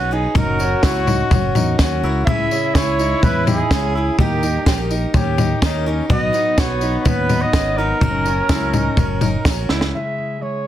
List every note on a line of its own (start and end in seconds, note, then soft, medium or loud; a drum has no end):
0.00 0.26 B1 medium
0.00 0.32 B1 medium
0.00 0.11 B2 medium
0.00 0.32 B2 medium
0.00 0.12 D#3 medium
0.00 0.12 F#3 medium
0.00 0.32 F#3 medium
0.00 0.11 B3 medium
0.00 0.32 B3 medium
0.00 0.12 C#4 medium
0.00 0.11 D#4 medium
0.00 0.32 D#4 medium
0.00 0.15 F#4 loud
0.00 0.32 B4 medium
0.11 0.34 F#3 soft
0.11 0.35 B3 medium
0.11 0.36 D#4 soft
0.11 0.35 D#4 medium
0.11 0.36 G#4 medium
0.11 0.35 B4 medium
0.35 0.74 F#1 medium
0.35 2.23 F#1 medium
0.35 2.23 F#2 medium
0.35 0.59 F#3 medium
0.35 2.24 F#3 medium
0.35 2.24 A#3 medium
0.35 0.60 C#4 medium
0.35 2.24 C#4 medium
0.35 0.59 D#4 medium
0.35 1.75 F#4 loud
0.35 0.59 F#4 medium
0.35 2.24 A#4 medium
0.35 0.58 A#4 medium
0.35 0.81 A#4 medium
0.35 2.24 C#5 medium
0.35 kick loud
0.35 floor tom loud
0.35 tambourine soft
0.59 0.83 C#4 medium
0.59 0.83 C#4 soft
0.59 0.83 F#4 medium
0.59 0.83 A#4 medium
0.59 tambourine medium
0.83 1.22 C#2 medium
0.83 1.07 F#3 medium
0.83 1.08 C#4 medium
0.83 1.07 E4 medium
0.83 1.07 F#4 medium
0.83 1.06 A#4 medium
0.83 1.28 C#5 medium
0.83 kick loud
0.83 snare loud
0.83 tambourine loud
1.07 1.31 C#4 soft
1.07 1.31 D#4 medium
1.07 1.31 A#4 medium
1.07 floor tom medium
1.07 tambourine medium
1.31 1.50 F#1 loud
1.31 1.55 F#3 medium
1.31 1.55 C#4 medium
1.31 1.56 C#4 medium
1.31 1.56 F#4 medium
1.31 1.54 A#4 medium
1.31 kick loud
1.31 floor tom loud
1.31 tambourine medium
1.55 1.77 E2 medium
1.55 1.79 C#4 medium
1.55 1.79 D#4 medium
1.55 1.79 F#4 medium
1.55 1.79 A#4 medium
1.55 floor tom medium
1.55 tambourine medium
1.79 2.01 D#2 medium
1.79 2.03 F#3 medium
1.79 2.04 C#4 medium
1.79 2.03 C#4 medium
1.79 2.24 F#4 loud
1.79 2.03 F#4 medium
1.79 2.02 A#4 medium
1.79 kick loud
1.79 snare loud
1.79 tambourine loud
2.03 2.25 C#2 medium
2.03 2.27 C#4 soft
2.03 2.27 E4 medium
2.03 2.28 F#4 medium
2.03 2.27 A#4 medium
2.26 2.46 C#2 loud
2.26 4.15 C#2 medium
2.26 2.51 C#3 medium
2.26 4.15 C#3 medium
2.26 2.51 G#3 medium
2.26 4.15 G#3 medium
2.26 2.51 C#4 medium
2.26 4.15 C#4 medium
2.26 4.14 E4 loud
2.26 2.51 E4 medium
2.26 4.15 E4 medium
2.26 2.51 E4 medium
2.26 2.50 G#4 medium
2.26 4.15 C#5 medium
2.26 2.77 E5 loud
2.26 4.16 E5 medium
2.26 kick loud
2.26 floor tom loud
2.51 2.75 C#4 medium
2.51 2.76 C#4 soft
2.51 2.76 E4 soft
2.51 2.75 G#4 medium
2.51 tambourine medium
2.75 3.13 C#2 loud
2.75 2.99 C#3 medium
2.75 2.99 G#3 medium
2.75 3.00 C#4 medium
2.75 2.99 E4 medium
2.75 2.98 G#4 medium
2.75 3.25 C#5 loud
2.75 kick loud
2.75 snare loud
2.75 tambourine loud
2.99 3.23 C#4 soft
2.99 3.23 D#4 medium
2.99 3.24 E4 medium
2.99 3.23 G#4 medium
2.99 tambourine medium
3.23 3.61 E2 loud
3.23 3.47 G#3 medium
3.23 3.47 C#4 medium
3.23 3.47 E4 medium
3.23 3.46 G#4 medium
3.23 3.47 B4 loud
3.23 kick loud
3.23 floor tom loud
3.23 tambourine medium
3.47 3.72 C#4 soft
3.47 3.71 D#4 medium
3.47 3.72 E4 soft
3.47 3.92 G#4 loud
3.47 3.71 G#4 medium
3.47 floor tom medium
3.47 tambourine medium
3.71 4.09 C#2 medium
3.71 3.95 C#3 medium
3.71 3.96 G#3 medium
3.71 3.94 C#4 medium
3.71 3.96 C#4 medium
3.71 3.96 E4 medium
3.71 3.94 G#4 medium
3.71 kick loud
3.71 snare loud
3.71 tambourine loud
3.95 4.20 C#4 soft
3.95 4.18 E4 medium
3.95 4.20 E4 medium
3.95 4.19 G#4 medium
3.95 4.18 G#4 medium
4.18 4.57 D#2 loud
4.18 6.06 D#2 medium
4.18 6.06 D#3 medium
4.18 4.43 D#3 medium
4.18 6.06 G3 medium
4.18 6.06 A#3 medium
4.18 4.43 A#3 medium
4.18 6.06 D#4 medium
4.18 4.84 D#4 medium
4.18 4.43 D#4 medium
4.18 4.42 G4 medium
4.18 4.64 G4 medium
4.18 4.43 G4 medium
4.18 6.06 A#4 medium
4.18 4.42 A#4 medium
4.18 6.06 D#5 medium
4.18 kick loud
4.18 floor tom loud
4.43 4.66 D#4 medium
4.43 4.67 G4 medium
4.43 4.67 A#4 medium
4.43 tambourine medium
4.66 5.05 A#1 loud
4.66 4.91 D#3 medium
4.66 4.91 A#3 medium
4.66 4.91 D#4 medium
4.66 5.11 G4 medium
4.66 4.90 G4 medium
4.66 4.91 G4 medium
4.66 4.89 A#4 medium
4.66 kick loud
4.66 snare loud
4.66 tambourine loud
4.91 5.14 D#4 medium
4.91 5.14 D#4 soft
4.91 5.14 G4 medium
4.91 5.14 A#4 medium
4.91 tambourine medium
5.14 5.52 D#2 medium
5.14 5.38 A#3 medium
5.14 5.38 C#4 medium
5.14 5.39 D#4 medium
5.14 5.59 G4 loud
5.14 5.39 G4 medium
5.14 5.38 A#4 medium
5.14 kick loud
5.14 floor tom loud
5.14 tambourine medium
5.38 5.62 D#4 medium
5.38 5.63 G4 medium
5.38 5.62 A#4 medium
5.38 floor tom medium
5.38 tambourine medium
5.62 6.00 D#2 medium
5.62 5.86 D#3 medium
5.62 5.87 A#3 medium
5.62 5.86 C#4 medium
5.62 5.88 D#4 loud
5.62 5.87 D#4 medium
5.62 5.86 G4 medium
5.62 5.85 A#4 loud
5.62 kick loud
5.62 snare loud
5.62 tambourine loud
5.86 6.09 C#4 medium
5.86 6.10 D#4 medium
5.86 6.10 G4 medium
5.86 6.10 A#4 medium
6.09 6.29 B1 loud
6.09 7.97 B1 medium
6.09 6.34 B2 medium
6.09 7.97 B2 medium
6.09 6.34 D#3 medium
6.09 7.51 F#3 medium
6.09 6.34 F#3 medium
6.09 7.97 B3 loud
6.09 6.33 B3 medium
6.09 7.51 B3 medium
6.09 7.51 D#4 medium
6.09 6.33 D#4 medium
6.09 6.34 F#4 medium
6.09 7.51 B4 medium
6.09 6.32 B4 medium
6.09 7.51 D#5 medium
6.09 6.61 D#5 loud
6.09 kick loud
6.09 floor tom loud
6.33 6.57 F#3 soft
6.33 6.58 B3 soft
6.33 6.58 D#4 medium
6.33 6.57 B4 medium
6.33 tambourine medium
6.58 6.96 B1 loud
6.58 6.82 B2 medium
6.58 6.82 D#3 medium
6.58 6.82 F#3 medium
6.58 6.82 B3 medium
6.58 6.81 D#4 medium
6.58 6.81 F#4 medium
6.58 6.80 B4 medium
6.58 7.00 C#5 loud
6.58 kick loud
6.58 snare loud
6.58 tambourine loud
6.81 7.04 F#3 soft
6.81 7.05 B3 medium
6.81 7.06 D#4 soft
6.81 7.05 D#4 medium
6.81 7.06 B4 medium
6.81 tambourine medium
7.00 7.09 C#5 medium
7.05 7.44 D#2 loud
7.05 7.29 F#3 medium
7.05 7.30 B3 medium
7.05 7.29 C#4 medium
7.05 7.29 D#4 medium
7.05 7.28 B4 medium
7.05 7.43 B4 loud
7.05 kick loud
7.05 floor tom loud
7.05 tambourine medium
7.29 7.53 F#3 soft
7.29 7.54 B3 medium
7.29 7.54 D#4 soft
7.29 7.53 D#4 medium
7.29 7.53 B4 soft
7.29 floor tom medium
7.29 tambourine medium
7.42 7.79 D#5 loud
7.53 7.92 G#1 medium
7.53 7.77 B2 medium
7.53 7.78 D#3 medium
7.53 8.00 F#3 soft
7.53 7.78 F#3 medium
7.53 8.02 B3 soft
7.53 7.78 B3 medium
7.53 7.77 C#4 medium
7.53 7.78 D#4 medium
7.53 8.02 B4 soft
7.53 7.77 B4 medium
7.53 kick loud
7.53 snare loud
7.53 tambourine loud
7.77 8.00 F#3 soft
7.77 8.02 B3 soft
7.77 8.01 D#4 medium
7.77 8.02 D#4 medium
7.77 9.69 A#4 medium
7.77 8.02 B4 medium
8.01 8.40 F#1 loud
8.01 9.90 F#1 medium
8.01 9.90 F#2 medium
8.01 8.25 F#3 medium
8.01 9.90 F#3 medium
8.01 9.90 A#3 medium
8.01 9.65 C#4 loud
8.01 9.90 C#4 medium
8.01 8.26 C#4 medium
8.01 8.25 D#4 medium
8.01 8.26 F#4 loud
8.01 9.90 A#4 medium
8.01 8.24 A#4 loud
8.01 9.90 C#5 medium
8.01 kick loud
8.01 floor tom loud
8.01 tambourine soft
8.26 8.49 C#4 medium
8.26 8.49 C#4 soft
8.26 8.49 F#4 medium
8.26 8.49 A#4 medium
8.26 tambourine medium
8.49 8.88 C#2 loud
8.49 8.73 F#3 medium
8.49 8.74 C#4 medium
8.49 8.73 E4 medium
8.49 8.74 F#4 loud
8.49 8.72 A#4 medium
8.49 kick loud
8.49 snare loud
8.49 tambourine loud
8.73 8.97 C#4 soft
8.73 8.97 D#4 medium
8.73 8.98 F#4 medium
8.73 8.97 A#4 medium
8.73 floor tom medium
8.73 tambourine medium
8.97 9.36 F#1 loud
8.97 9.21 F#3 medium
8.97 9.21 C#4 medium
8.97 9.22 C#4 medium
8.97 9.21 F#4 medium
8.97 9.20 A#4 medium
8.97 kick loud
8.97 floor tom loud
8.97 tambourine medium
9.21 9.45 C#4 medium
9.21 9.45 D#4 medium
9.21 9.46 F#4 medium
9.21 9.45 A#4 medium
9.21 floor tom medium
9.21 tambourine medium
9.45 9.67 A#1 medium
9.45 9.70 F#3 medium
9.45 9.69 C#4 medium
9.45 9.70 C#4 medium
9.45 9.70 F#4 medium
9.45 9.69 A#4 medium
9.45 9.68 A#5 medium
9.45 kick loud
9.45 snare loud
9.45 tambourine loud
9.69 9.91 C#2 medium
9.69 9.95 C#4 medium
9.69 9.93 E4 medium
9.69 9.94 F#4 medium
9.69 9.94 A#4 medium
9.69 9.92 D#5 medium
9.69 snare medium
9.81 snare medium
9.94 10.67 C#3 medium
9.94 10.40 G#3 soft
9.94 10.67 C#4 soft
9.94 10.17 E4 soft
9.94 10.41 G#4 soft
9.94 10.44 E5 medium
10.18 10.65 E4 soft
10.42 10.67 G#3 soft
10.42 10.67 G#4 soft
10.42 10.67 C#5 medium